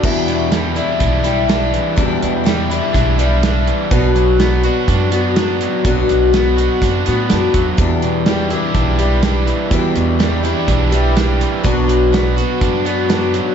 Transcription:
<<
  \new Staff \with { instrumentName = "Tonewheel organ" } { \time 4/4 \key e \minor \tempo 4 = 124 r1 | r1 | r1 | r1 |
<e' g' b' d''>1~ | <e' g' b' d''>1 | <d' fis' b' d''>1 | }
  \new Staff \with { instrumentName = "Twelve-string acoustic guitar" } { \time 4/4 \key e \minor <e, b, e g d' e'>4 <e g d' e'>8 <e g d' e'>4 <e g d' e'>8 <e g d' e'>4 | <e, b, e g d' e'>4 <e g d' e'>8 <e g d' e'>4 <e g d' e'>8 <e g d' e'>4 | <b, fis b d' fis'>4 <fis b d' fis'>8 <b d' fis'>4 <b d' fis'>8 <fis b d' fis'>4 | <b, fis b d' fis'>4 <fis b d' fis'>8 <b d' fis'>4 <b d' fis'>8 <fis b d' fis'>4 |
<e, b, e g d' g'>4 <e g d' g'>8 <e g d' g'>4 <e g d' g'>8 <e g d' g'>4 | <e, b, e g d' g'>4 <e g d' g'>8 <e g d' g'>4 <e g d' g'>8 <e g d' g'>4 | <b, fis b d' fis'>4 <fis b d' fis'>8 <b d' fis'>4 <b d' fis'>8 <fis b d' fis'>4 | }
  \new Staff \with { instrumentName = "Overdriven electric guitar" } { \clef bass \time 4/4 \key e \minor e,8 b,8 g8 e'8 d'8 g8 d'8 e8 | e,8 b,8 g8 e'8 d'8 g8 d'8 e8 | b,8 fis8 b8 fis'8 d'8 b8 d'8 fis8 | b,8 fis8 b8 fis'8 d'8 b8 d'8 fis8 |
e,8 b,8 g8 e'8 d'8 g8 d'8 e8 | e,8 b,8 g8 e'8 d'8 g8 d'8 e8 | b,8 fis8 b8 fis'8 d'8 b8 d'8 fis8 | }
  \new Staff \with { instrumentName = "Upright bass" } { \clef bass \time 4/4 \key e \minor e,2 b,,2 | e,8 e,4. b,,2 | b,,2 fis,2 | b,,8 b,,4. fis,8 a,8 fis,8 e,8 |
e,2 b,,2 | e,8 e,4. b,,2 | b,,2 fis,2 | }
  \new DrumStaff \with { instrumentName = "Drums" } \drummode { \time 4/4 <cymc bd>8 hh8 <hh sn>8 hh8 <hh bd>8 hh8 <hh sn>8 hh8 | <hh bd>8 hh8 <hh sn>8 hh8 <hh bd>8 hh8 <hh sn>8 hh8 | <hh bd>8 hh8 <hh sn>8 hh8 <hh bd>8 hh8 <hh sn>8 hh8 | <hh bd>8 hh8 <hh sn>8 hh8 <hh bd>8 hh8 <hh sn>8 <hh bd>8 |
<hh bd>8 hh8 <hh sn>8 hh8 <hh bd>8 hh8 <hh sn>8 hh8 | <hh bd>8 hh8 <hh sn>8 hh8 <hh bd>8 hh8 <hh sn>8 hh8 | <hh bd>8 hh8 <hh sn>8 hh8 <hh bd>8 hh8 <hh sn>8 hh8 | }
>>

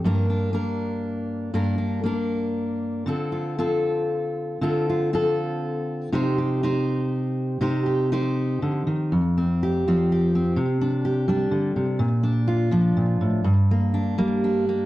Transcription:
\new Staff \with { instrumentName = "Steel-string acoustic guitar" } { \time 3/4 \key c \dorian \tempo 4 = 121 << { <bes d' bes'>8 d'8 <bes d' bes'>2 | <bes d' bes'>8 d'8 <bes d' bes'>2 | <c' f' a'>8 f'8 <c' f' a'>2 | <c' f' a'>8 f'8 <c' f' a'>2 |
<ees' g' c''>8 g'8 <ees' g' c''>2 | <ees' g' c''>8 g'8 <ees' g' c''>2 | \key bes \lydian r8 c'8 g'8 c'8 g'8 c'8 | r8 d'8 g'8 d'4. |
r8 d'8 f'8 d'4. | r8 bes8 d'8 bes8 d'8 bes8 | } \\ { g,2. | g,2. | d2. | d2. |
c2. | c2 d8 ees8 | f,4. f4. | c4. g8 d8 c8 |
bes,4. f8 bes,8 a,8 | g,4. g4. | } >> }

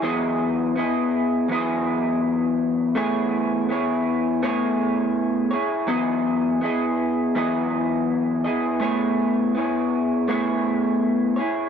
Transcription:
\new Staff \with { instrumentName = "Clean electric guitar" } { \time 4/4 \key e \major \tempo 4 = 82 <e fis b e' gis' dis''>4 <b e' gis' dis''>4 <e fis b e' gis' dis''>2 | <a b e' gis' cis''>4 <b e' gis' cis''>4 <a b e' gis' cis''>4. <e' gis' cis''>8 | <e fis b e' gis' dis''>4 <b e' gis' dis''>4 <e fis b e' gis' dis''>4. <b e' gis' dis''>8 | <a b e' gis' cis''>4 <b e' gis' cis''>4 <a b e' gis' cis''>4. <e' gis' cis''>8 | }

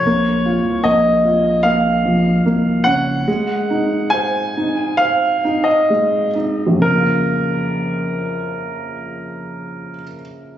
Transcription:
<<
  \new Staff \with { instrumentName = "Grand piano" } { \time 4/4 \key bes \minor \tempo 4 = 68 des''4 ees''4 f''4. ges''8~ | ges''4 aes''4 f''8. ees''8. r8 | bes'1 | }
  \new Staff \with { instrumentName = "Upright piano" } { \time 4/4 \key bes \minor bes8 f'8 bes8 f'8 bes8 f8 bes8 des'8 | aes8 ees'8 c''8 ees'8 c''8 ees'8 aes8 ees'8 | <bes,, f, des f bes f'>1 | }
  \new Staff \with { instrumentName = "Sub bass" } { \clef bass \time 4/4 \key bes \minor bes,,8. c,16 bes,,2 c,8 ges,,8 | r1 | r1 | }
>>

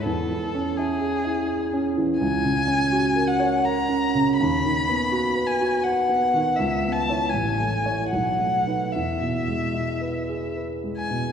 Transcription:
<<
  \new Staff \with { instrumentName = "Violin" } { \time 3/4 \key e \major \tempo 4 = 81 a'4 gis'4. r8 | gis''4. fis''8 ais''4 | b''4. gis''8 fis''4 | e''8 a''8 gis''4 fis''4 |
e''2 r8 gis''8 | }
  \new Staff \with { instrumentName = "Grand piano" } { \time 3/4 \key e \major \tuplet 3/2 { e,8 e8 cis'8 e'8 gis'8 e'8 gis'8 cis'8 e8 } | \tuplet 3/2 { cis,8 cis8 cis'8 fis'8 ais'8 cis''8 ais'8 cis'8 cis8 } | \tuplet 3/2 { dis,8 dis8 b8 fis'8 b'8 fis'8 b'8 b8 dis8 } | \tuplet 3/2 { cis,8 b8 <e' cis''>8 a,,8 a8 <e' cis''>8 b,,8 a8 <dis' b'>8 } |
\tuplet 3/2 { e,8 b,8 gis8 e'8 b'8 gis'8 b'8 gis8 b,8 } | }
>>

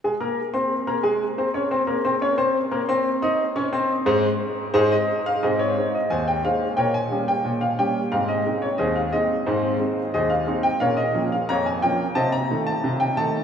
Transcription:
<<
  \new Staff \with { instrumentName = "Grand piano" } { \time 2/4 \key aes \major \tempo 4 = 89 <aes aes' aes''>16 <bes bes' bes''>8 <c' c'' c'''>8 <bes bes' bes''>16 <aes aes' aes''>8 | <c' c'' c'''>16 <des' des'' des'''>16 <c' c'' c'''>16 <bes bes' bes''>16 <c' c'' c'''>16 <des' des'' des'''>16 <c' c'' c'''>8 | <bes bes' bes''>16 <c' c'' c'''>8 <ees' ees'' ees'''>8 <des' des'' des'''>16 <c' c'' c'''>8 | r4 <aes' c''>16 ees''8 f''16 |
<aes' c'' ees''>16 des''8 ees''16 <c'' ees'' aes''>16 g''16 f''8 | <bes' des'' g''>16 aes''8 g''8 f''16 g''8 | f''16 ees''8 des''16 <aes' c'' ees''>16 f''16 ees''8 | <ees' aes' c''>4 <aes' c'' ees''>16 f''8 g''16 |
<bes' des'' f''>16 ees''8 f''16 <des'' f'' bes''>16 aes''16 g''8 | <c'' ees'' a''>16 bes''8 a''8 g''16 a''8 | }
  \new Staff \with { instrumentName = "Grand piano" } { \time 2/4 \key aes \major r2 | r2 | r2 | <aes, aes ees' c''>8 r8 <aes, aes ees'>8 r8 |
<aes, c'>8 <aes ees' c''>8 ees,8 <aes ees' c''>8 | bes,8 <g des' g'>8 bes,8 <g des' g'>8 | <aes, c'>8 <aes c' ees'>8 ees,8 <aes c' ees'>8 | <aes, c'>8 <aes c' ees'>8 ees,8 <aes c' ees'>8 |
<bes, des'>8 <f bes des'>8 f,8 <f bes des'>8 | c8 <ees a ees'>8 c8 <ees a ees'>8 | }
>>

